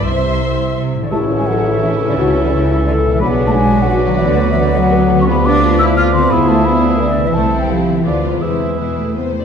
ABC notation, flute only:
X:1
M:3/4
L:1/16
Q:1/4=172
K:C
V:1 name="Flute"
z8 c3 d | [K:A] a3 g f3 e e3 d | c3 d c4 d3 e | b3 a g3 f f3 e |
d3 e d2 f4- f c' | [K:Ephr] b2 d'4 e'2 f'2 c'2 | b2 a2 b2 z2 d3 e | a3 g f3 e d3 c |
c4 B4 c3 z |]